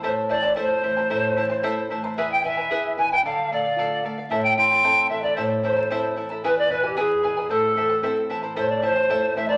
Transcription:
<<
  \new Staff \with { instrumentName = "Pan flute" } { \time 2/4 \key a \minor \tempo 4 = 113 c''8 d''8 c''4~ | c''4. r8 | e''16 g''16 e''4 gis''16 g''16 | f''8 d''4 r8 |
e''16 g''16 g''4 e''16 d''16 | c''8 c''4 r8 | b'16 d''16 b'16 g'16 gis'4 | a'4. r8 |
c''16 d''16 c''4 e''16 d''16 | }
  \new Staff \with { instrumentName = "Pan flute" } { \time 2/4 \key a \minor c''8 d''8 c''4~ | c''4. r8 | e''16 g''16 e''4 gis''16 g''16 | a''8 f''4 r8 |
e''16 g''16 c'''4 e''16 d''16 | c''8 c''4 r8 | b'16 d''16 b'16 g'16 gis'4 | a'4. r8 |
c''16 d''16 c''4 e''16 d''16 | }
  \new Staff \with { instrumentName = "Charango" } { \time 2/4 \key a \minor <e' a' c'' e'' a''>8 <e' c'' e'' a''>16 <e' c'' a''>16 <e' a' c'' e'' a''>8 <e' c'' e'' a''>16 <e' c'' a''>16 | <e' a' c'' e'' a''>8 <e' c'' e'' a''>16 <e' c'' a''>16 <e' a' c'' e'' a''>8 <e' c'' e'' a''>16 <e' c'' a''>16 | <e' gis' b' e'' gis''>8 <e' b' e'' gis''>16 <e' b' gis''>16 <e' gis' b' e'' gis''>8 <e' b' e'' gis''>16 <e' b' gis''>16 | <a' d'' f''>8 <a' d'' f''>16 <d'' f''>16 <a' d'' f''>8 <a' d'' f''>16 <d'' f''>16 |
<e' a' c'' e'' a''>8 <e' a' e'' a''>16 <e' a' a''>16 <e' a' c'' e'' a''>8 <e' a' e'' a''>16 <e' a' a''>16 | <e' a' c'' e'' a''>8 <e' a' e'' a''>16 <e' a' a''>16 <e' a' c'' e'' a''>8 <e' a' e'' a''>16 <e' a' a''>16 | <e' gis' b' e'' gis''>8 <e' b' e'' gis''>16 <e' b' gis''>16 <e' gis' b' e'' gis''>8 <e' b' e'' gis''>16 <e' b' gis''>16 | <e' a' c'' e'' a''>8 <e' c'' e'' a''>16 <e' c'' a''>16 <e' a' c'' e'' a''>8 <e' c'' e'' a''>16 <e' c'' a''>16 |
<e' a' c'' e'' a''>8 <e' c'' e'' a''>16 <e' c'' a''>16 <e' a' c'' e'' a''>8 <e' c'' e'' a''>16 <e' c'' a''>16 | }
  \new Staff \with { instrumentName = "Nylon-string guitar" } { \clef bass \time 2/4 \key a \minor a,8 e8 a8 e8 | a,8 e8 a8 e8 | e,8 b,8 e8 b,8 | d8 a8 f'8 a8 |
a,8 e8 c'8 e8 | a,8 e8 c'8 e8 | e,8 b,8 e8 b,8 | a,8 e8 c'8 e8 |
a,8 e8 a8 e8 | }
>>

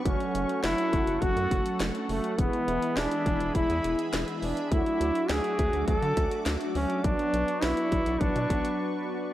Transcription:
<<
  \new Staff \with { instrumentName = "Analog synth pad" } { \time 4/4 \key e \mixolydian \tempo 4 = 103 << { <a' cis'''>1 | <gis' b''>1 | <fis' d'''>1 | <b' cis'''>1 | } \\ { fis''1 | e''1~ | e''1 | d''1 | } >> }
  \new Staff \with { instrumentName = "Trombone" } { \time 4/4 \key e \mixolydian cis'4 e'4 fis'4 r8 a8 | b4 d'4 e'4 r8 d'8 | e'4 gis'4 a'4 r8 cis'8 | d'4 e'4 d'4. r8 | }
  \new Staff \with { instrumentName = "Analog polysynth" } { \time 4/4 \key e \mixolydian <fis a cis' fis'>1 | <e gis b e'>1 | <fis a d' fis'>1 | <fis b d' fis'>1 | }
  \new Staff \with { instrumentName = "Analog synth bass" } { \clef bass \time 4/4 \key e \mixolydian fis,,16 r16 fis,,16 r16 fis,,16 r16 fis,,16 fis,,16 fis,,16 fis,16 fis,,16 r16 fis,,16 r16 fis,,16 r16 | e,,16 r16 e,,16 r16 e,,16 r16 e,,16 e,,16 e,,16 e,16 e,,16 r16 e,,16 r16 e,,16 r16 | d,16 r16 d,16 r16 d,16 r16 d,16 d,16 d,16 d16 d,16 r16 d,16 r16 d,16 r16 | b,,16 r16 b,,16 r16 b,,16 r16 b,,16 b,,16 b,,16 b,16 b,,16 r4 r16 | }
  \new DrumStaff \with { instrumentName = "Drums" } \drummode { \time 4/4 <hh bd>16 hh16 hh16 hh16 <hh sn>16 hh16 <hh bd>16 hh16 <hh bd>16 hh16 <hh bd>16 hh16 <hc hh sn>16 hh16 hho16 hh16 | <hh bd>16 hh16 hh16 hh16 <hh sn>16 hh16 <hh bd>16 hh16 <hh bd>16 hh16 hh16 hh16 <hc hh sn>16 hh16 hho16 hh16 | <hh bd>16 hh16 hh16 hh16 <hh sn>16 hh16 <hh bd>16 hh16 <hh bd>16 hh16 <hh bd>16 hh16 <hc hh sn>16 hh16 hho16 hh16 | <hh bd>16 hh16 hh16 hh16 <hh sn>16 hh16 <hh bd>16 hh16 <hh bd>16 hh16 <hh bd>16 hh16 r4 | }
>>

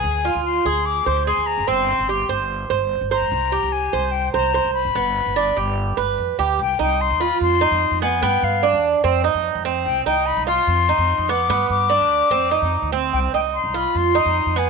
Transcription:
<<
  \new Staff \with { instrumentName = "Flute" } { \time 4/4 \key g \phrygian \tempo 4 = 147 aes''4 c'''4 d'''4 c'''8 bes''8 | c'''2 r4. bes''8~ | bes''4 aes''4 g''8 bes''4 b''8~ | b''2. r4 |
\key c \minor g''8 g''8 c'''8 b''8 c'''4. aes''8 | g''8 f''4 r2 r8 | g''8 g''8 b''8 c'''2 d'''8~ | d'''8 d'''2. r8 |
g''8 g''8 c'''8 b''8 c'''4. aes''8 | }
  \new Staff \with { instrumentName = "Cuban tres" } { \time 4/4 \key g \phrygian aes'8 f'4 aes'4 c''8 aes'4 | c'4 g'8 c''4 c''4 c''8~ | c''8 g'4 c''4 c''8 c''4 | b4 d'8 g'4 b'4 g'8 |
\key c \minor r8 ees'4 f'4 ees'4 b8 | b4 d'4 c'8 ees'4 c'8~ | c'8 ees'4 f'4 ees'4 b8 | b4 d'4 c'8 ees'4 c'8~ |
c'8 ees'4 f'4 ees'4 b8 | }
  \new Staff \with { instrumentName = "Upright bass" } { \clef bass \time 4/4 \key g \phrygian d,8. d,8. d,4 d,8. d,8 aes,,16 | g,,8. g,,8. g,,4 g,,8. g,,8 g,16 | c,8. c,8. c,4 c,8. c,8 aes,,16 | g,,8. g,,8. g,,4 g,,8 f,8 d,8 |
\key c \minor c,8 c,8. ees,8 r16 f,8. f,8 f,8. | g,8 g,8. e,8 r16 f,8. f,8 f,8. | c,8 c,8. c,8 r16 f,8. f,8 f,8. | g,8 g,8. d,8 r16 f,8. f,8 d,8. |
c,8 c,8. c,8 r16 f,8. f,8 f,8. | }
>>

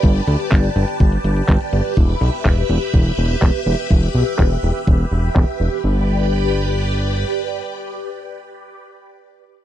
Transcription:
<<
  \new Staff \with { instrumentName = "String machine" } { \time 4/4 \key g \major \tempo 4 = 124 <g' b' d'' a''>1 | <g' b' e'' b''>1~ | <g' b' e'' b''>1 | <g' b' d'' b''>1~ |
<g' b' d'' b''>1 | }
  \new Staff \with { instrumentName = "Analog synth bass" } { \clef bass \time 4/4 \key g \major g,,8 d,8 g,,8 g,,8 g,,8 g,,8 g,,8 g,,8 | e,,8 b,,8 e,,8 e,,8 e,,8 e,,8 e,,8 e,,8 | e,,8 b,,8 e,,8 e,,8 e,,8 e,,8 e,,8 e,,8 | g,,2. r4 |
r1 | }
  \new DrumStaff \with { instrumentName = "Drums" } \drummode { \time 4/4 <hh bd>16 hh16 hh16 hh16 <hc hh bd>16 hh16 hh16 hh16 <hh bd>16 hh16 hh16 hh16 <hc hh bd>16 hh16 hh16 hh16 | <hh bd>16 hh16 hh16 hh16 <hc hh bd>16 hh16 hh16 hh16 <hh bd>16 hh16 hh16 hh16 <hc hh bd>16 hh16 hh16 hh16 | <hh bd>16 hh16 hh16 hh16 <hc hh bd>16 hh16 hh16 hh16 <hh bd>16 hh16 hh16 hh16 <hc bd>16 hh16 hh16 hh16 | r4 r4 r4 r4 |
r4 r4 r4 r4 | }
>>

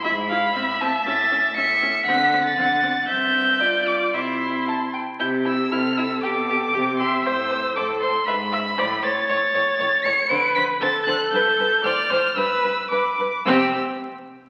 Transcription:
<<
  \new Staff \with { instrumentName = "Violin" } { \time 2/4 \key c \major \tempo 4 = 117 b''4. a''8 | a'''4 cis''''4 | b'''8. a'''4~ a'''16 | g'''4. d'''8 |
c'''4. r8 | g'''8 e'''8 f'''8 e'''8 | d'''4. c'''8 | e'''4 d'''8 c'''8 |
b''4. a'''8 | a'''4. cis''''8 | d''''8 b'''8 a'''8 fis'''8 | g'''4 f'''4 |
e'''4 d'''4 | e'''8 r4. | }
  \new Staff \with { instrumentName = "Violin" } { \time 2/4 \key c \major e''8 f''8 e''4~ | e''4 e''4 | fis''4 fis''4 | e''4 d''4 |
e''4 a''8 g''8 | e'8 e'8 e'8 e'8 | g'8 g'8 g'8 g'8 | c''8 c''8 c''8 c''8 |
e''8 e''8 c''8 c''8 | cis''8 cis''8 cis''8 cis''8 | c''8 c''8 c''8 c''8 | b'8 b'8 c''8 c''8 |
b'8 b'8 b'8 b'8 | g'8 r4. | }
  \new Staff \with { instrumentName = "Viola" } { \time 2/4 \key c \major e'8 e'8 c'8 c'8 | cis'8 cis'8 cis'8 cis'8 | c'8 c'8 c'8 c'8 | c'4 f'4 |
e'4. r8 | g'4 a'4~ | a'4 g'8 e''8 | c''4 a'4 |
b'8 e''8 d''8 des''8~ | des''2 | b'4 a'4~ | a'4 d''8 c''8 |
b'4 b'8 r8 | c'8 r4. | }
  \new Staff \with { instrumentName = "Cello" } { \clef bass \time 2/4 \key c \major gis,4 a,4 | a,4 a,4 | d4 d4 | g,2 |
c4. r8 | c4 c4 | b,4 c4 | a,4 a,4 |
gis,4 a,4 | a,8 a,8 a,8 a,8 | d8 d8 d8 d8 | g,8 g,8 a,8 a,8 |
g,8 g,8 g,8 g,8 | c8 r4. | }
>>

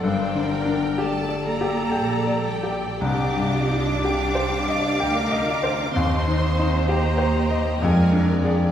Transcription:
<<
  \new Staff \with { instrumentName = "Violin section" } { \time 3/4 \key g \minor \tempo 4 = 63 g''4 a''8 bes''4 g''8 | \key c \minor d'''2. | c'''4 bes''4 aes''8 r8 | }
  \new Staff \with { instrumentName = "Viola section" } { \time 3/4 \key g \minor c''8 bes'8 a'2 | \key c \minor g'4 g'4 bes'4 | c''2 bes'8 aes'8 | }
  \new Staff \with { instrumentName = "Violin section" } { \time 3/4 \key g \minor << { d''4 d''2 | \key c \minor ees''4 f''2 | ees''4 ees''4 d''4 | } \\ { bes'4 a'4 g'4 | g'8 f'8 g'4 g'8 f'8 | ees'4 g'8 g'8 aes'8 bes'8 | } >> }
  \new Staff \with { instrumentName = "Grand piano" } { \time 3/4 \key g \minor \tuplet 3/2 { g,8 d8 d'8 g'8 d''8 g'8 g''8 d''8 g'8 } | \key c \minor \tuplet 3/2 { c,8 g,8 ees'8 g'8 c''8 ees''8 g''8 ees''8 c''8 } | \tuplet 3/2 { ees,8 ees8 ees'8 g'8 c''8 ees''8 f,8 d'8 <aes' d''>8 } | }
  \new Staff \with { instrumentName = "Cello section" } { \time 3/4 \key g \minor g4 a8 bes4 g8 | \key c \minor d'2. | c'4 bes4 aes8 r8 | }
  \new Staff \with { instrumentName = "Double bass section" } { \clef bass \time 3/4 \key g \minor g,,2 bes,,4 | \key c \minor c,2 d,4 | ees,2 f,4 | }
>>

